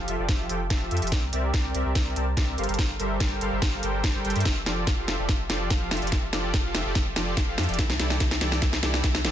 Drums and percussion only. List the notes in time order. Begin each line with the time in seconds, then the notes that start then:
0.08 closed hi-hat
0.29 kick, snare, closed hi-hat
0.49 closed hi-hat
0.70 kick, snare, closed hi-hat
0.91 closed hi-hat
0.97 closed hi-hat
1.02 closed hi-hat
1.07 closed hi-hat
1.12 kick, snare, closed hi-hat
1.33 closed hi-hat
1.54 kick, snare, closed hi-hat
1.75 closed hi-hat
1.95 kick, snare, closed hi-hat
2.16 closed hi-hat
2.37 kick, snare, closed hi-hat
2.58 closed hi-hat
2.64 closed hi-hat
2.69 closed hi-hat
2.74 closed hi-hat
2.79 kick, snare, closed hi-hat
3.00 closed hi-hat
3.20 kick, snare, closed hi-hat
3.41 closed hi-hat
3.62 kick, snare, closed hi-hat
3.83 closed hi-hat
4.04 kick, snare, closed hi-hat
4.25 closed hi-hat
4.30 closed hi-hat
4.36 closed hi-hat
4.40 closed hi-hat
4.45 kick, snare, closed hi-hat
4.66 snare, closed hi-hat
4.87 kick, snare, closed hi-hat
5.08 snare, closed hi-hat
5.29 kick, snare, closed hi-hat
5.50 snare, closed hi-hat
5.70 kick, snare, closed hi-hat
5.91 snare, closed hi-hat
5.97 closed hi-hat
6.02 closed hi-hat
6.07 closed hi-hat
6.12 kick, snare, closed hi-hat
6.33 snare, closed hi-hat
6.54 kick, snare, closed hi-hat
6.75 snare, closed hi-hat
6.95 kick, snare, closed hi-hat
7.16 snare, closed hi-hat
7.37 kick, snare, closed hi-hat
7.58 snare, closed hi-hat
7.63 closed hi-hat
7.69 closed hi-hat
7.74 closed hi-hat
7.79 kick, snare, closed hi-hat
7.90 snare
8.00 snare, closed hi-hat
8.10 snare
8.20 kick, snare, closed hi-hat
8.31 snare
8.41 snare, closed hi-hat
8.52 snare
8.62 kick, snare, closed hi-hat
8.73 snare
8.83 snare, closed hi-hat
8.94 snare
9.04 kick, snare, closed hi-hat
9.15 snare
9.25 snare, closed hi-hat